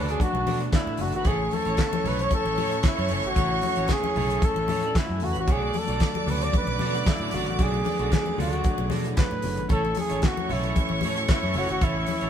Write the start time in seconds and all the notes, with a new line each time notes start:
Already playing: D2 A3 B3 D4 F#4 A4 B4 C#5 D5 A5
0.09 F#4 G#4 A4 D5, closed hi-hat
0.18 A3 B3 D4 F#4 B4, kick, closed hi-hat, muted conga, high conga
0.23 F#4
0.34 B1, muted clean electric guitar stroke, muted conga
0.46 B2 F#4 A4 D5, open hi-hat, high conga
0.59 A3 B3 D4 F#4 B4, muted clean electric guitar stroke, closed hi-hat
0.72 D4 E4 D5, muted clean electric guitar stroke, kick, snare, clap, closed hi-hat, muted conga
0.82 E4 E5
0.86 A2 F#4 F#5, muted clean electric guitar stroke, muted conga
0.97 F#1 A3 B3 D4 F#4 G#4 B4 G#5, open hi-hat, low conga
1.01 F#4
1.07 A4 A5
1.12 G#1 F#4 B5, muted clean electric guitar stroke, closed hi-hat
1.17 B4
1.25 A1 E3 A3 C#4 E4 G#4 A4 C#5 C#6, kick, closed hi-hat, low conga
1.40 muted clean electric guitar stroke
1.51 A4, muted clean electric guitar stroke, open hi-hat, high conga
1.64 A1 A3 C#4 E4 A4 C#5, closed hi-hat
1.77 muted clean electric guitar stroke, kick, snare, clap, closed hi-hat
1.92 muted clean electric guitar stroke, muted conga, high conga
2.03 B1 A3 C#4 E4 A4 C#5, open hi-hat, low conga
2.08 B4
2.18 E4 A4 C#5, closed hi-hat
2.29 A3 C#4 E4, kick, closed hi-hat, muted conga, high conga
2.35 A4
2.45 A1, muted clean electric guitar stroke, muted conga
2.57 A2 E4 A4 C#5, open hi-hat, high conga
2.69 A3 C#4 E4, muted clean electric guitar stroke, closed hi-hat
2.83 muted clean electric guitar stroke, kick, snare, clap, closed hi-hat, muted conga
2.87 E4
2.97 F#2 E4 A4 C#5, muted conga
3.08 F#1 A3 C#4 E4 A4 C#5, open hi-hat, low conga
3.23 G#1 F#4, muted clean electric guitar stroke, closed hi-hat
3.35 A1 A3 C#4 E4 A4 C#5, kick, closed hi-hat, muted conga, low conga
3.50 muted clean electric guitar stroke
3.61 muted clean electric guitar stroke, open hi-hat, high conga
3.76 A1 A3 C#4 E4 A4 C#5, closed hi-hat
3.88 muted clean electric guitar stroke, kick, snare, clap, closed hi-hat, muted conga
3.93 G#4
4.04 muted clean electric guitar stroke, high conga
4.16 B1 A3 C#4 E4 A4 C#5, open hi-hat, low conga
4.30 E4 A4 C#5, closed hi-hat
4.41 A3 C#4 E4 A4, kick, closed hi-hat, high conga
4.56 A1, muted clean electric guitar stroke, muted conga
4.68 A2 E4 A4 C#5, open hi-hat, high conga
4.81 A3 C#4 F#4, muted clean electric guitar stroke, closed hi-hat
4.85 D4 D5
4.94 E4 E5, muted clean electric guitar stroke, kick, snare, clap, closed hi-hat
4.98 E4
5.03 F#4 F#5
5.09 F#2 G#4 G#5, muted clean electric guitar stroke
5.19 E2 A3 C#4 E4 A4 A5, open hi-hat, low conga
5.24 F#4
5.31 B4 B5
5.35 A1, muted clean electric guitar stroke, closed hi-hat
5.39 F#4 C#5 C#6
5.46 B1 D3 F#3 A3 B3 F#4 A4 D5 D6, kick, closed hi-hat, muted conga, low conga
5.51 G#4 D5
5.62 muted clean electric guitar stroke
5.73 muted clean electric guitar stroke, open hi-hat, high conga
5.78 A4
5.86 B1 D3 F#3 A3 B3 F#4, closed hi-hat
5.90 F#4 A4 D5
6.00 muted clean electric guitar stroke, kick, snare, clap, closed hi-hat
6.15 muted clean electric guitar stroke, high conga
6.26 D2 D3 F#3 A3 B3 C#4 F#4 A4 D5, open hi-hat, low conga
6.31 B4
6.41 F#4 A4 D5, closed hi-hat
6.52 D3 F#3 A3 B3 F#4, kick, closed hi-hat, muted conga, high conga
6.57 B4
6.67 B1, muted clean electric guitar stroke, muted conga
6.79 B2 F#4 A4 D5, open hi-hat, high conga
6.93 D3 F#3 A3 B3 F#4, muted clean electric guitar stroke, closed hi-hat
7.06 E4, muted clean electric guitar stroke, kick, snare, clap, closed hi-hat, muted conga
7.20 A2 F#4 A4 D5
7.31 G#1 D3 F#3 A3 B3 F#4 A4 D5, open hi-hat, low conga
7.46 A1 F#4, muted clean electric guitar stroke, closed hi-hat
7.59 B1 D3 F#3 A3 B3 F#4 G#4 A4 D5, kick, closed hi-hat, muted conga, low conga
7.73 muted clean electric guitar stroke, muted conga
7.85 muted clean electric guitar stroke, open hi-hat, high conga
7.99 B1 D3 F#3 A3 B3 F#4 A4 D5, closed hi-hat
8.12 G#4, muted clean electric guitar stroke, kick, snare, clap, closed hi-hat, muted conga
8.26 muted clean electric guitar stroke, high conga
8.38 D2 D3 F#3 A3 B3 F#4 A4 D5, open hi-hat, low conga
8.53 F#4 A4 D5, closed hi-hat
8.63 D3 F#3 A3 B3 F#4, kick, closed hi-hat, high conga
8.78 B1, muted clean electric guitar stroke, muted conga
8.90 B2 F#4 A4 D5, open hi-hat, high conga
9.05 D3 F#3 A3 B3 E4, muted clean electric guitar stroke, closed hi-hat
9.16 B4, muted clean electric guitar stroke, kick, snare, clap, closed hi-hat, muted conga
9.31 A2, muted clean electric guitar stroke, muted conga
9.42 F#1 D3 F#3 A3 B3 F#4, open hi-hat, low conga
9.56 G#1, muted clean electric guitar stroke, closed hi-hat
9.68 A1 E3 A3 C#4 E4 A4 C#5 C#6, kick, closed hi-hat, muted conga, low conga
9.72 A4
9.83 muted clean electric guitar stroke, muted conga
9.95 muted clean electric guitar stroke, open hi-hat, high conga
10.00 G#4
10.09 A1 A3 C#4 E4 A4 C#5, closed hi-hat
10.22 muted clean electric guitar stroke, kick, snare, clap, closed hi-hat
10.26 F#4
10.37 muted clean electric guitar stroke, muted conga, high conga
10.47 B1 A3 C#4 E4 A4 C#5, open hi-hat, low conga
10.52 E4
10.64 E4 A4 C#5, closed hi-hat
10.74 A3 C#4 E4, kick, closed hi-hat, high conga
10.89 A1, muted clean electric guitar stroke, muted conga
11.01 A2 E4, open hi-hat, high conga
11.05 A4 C#5
11.16 A3 C#4 F#4, muted clean electric guitar stroke, closed hi-hat
11.28 E4, kick, snare, clap, closed hi-hat
11.43 F#2 E4 A4 C#5, muted conga
11.53 F#1 A3 C#4 E4 A4, open hi-hat, low conga
11.57 F#4 C#5
11.69 G#1 F#4, muted clean electric guitar stroke, closed hi-hat
11.81 A1 A3 C#4 E4 A4 C#5, kick, closed hi-hat, low conga
11.96 muted clean electric guitar stroke
12.06 muted clean electric guitar stroke, open hi-hat, high conga
12.21 A1 A3 C#4 E4 F#4 A4 C#5, closed hi-hat